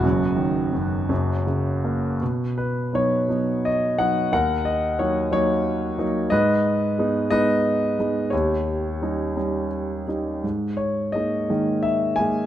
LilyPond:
<<
  \new Staff \with { instrumentName = "Grand piano" } { \time 6/8 \key b \major \tempo 4. = 58 << { fis'2 r4 | r8 b'8 cis''4 dis''8 fis''8 | fis''8 dis''8 cis''8 cis''4 r8 | dis''4. dis''4. |
cis''2 r4 | r8 cis''8 dis''4 e''8 gis''8 | } \\ { b2 r4 | r2. | ais'4. r4. | b'4. b'4. |
g'2 r4 | r2. | } >> }
  \new Staff \with { instrumentName = "Grand piano" } { \time 6/8 \key b \major <fis,, fis,>8 dis8 fis,8 <fis,, fis,>8 cis8 ais8 | b,4 <fis b dis'>8 <fis b dis'>4 <fis b dis'>8 | dis,4 <fis ais dis'>8 <fis ais dis'>4 <fis ais dis'>8 | gis,4 <gis b dis'>8 <gis b dis'>4 <gis b dis'>8 |
dis,4 <g cis' dis'>8 <g cis' dis'>4 <g cis' dis'>8 | gis,4 <gis ais dis'>8 <dis gis ais>4 <gis ais dis'>8 | }
>>